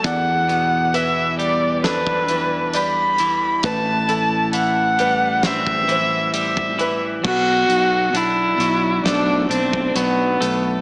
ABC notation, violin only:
X:1
M:4/4
L:1/16
Q:1/4=67
K:Bphr
V:1 name="Violin"
f4 e2 d2 B4 b4 | a4 f4 e4 e3 z | F4 E4 D2 C2 B,3 z |]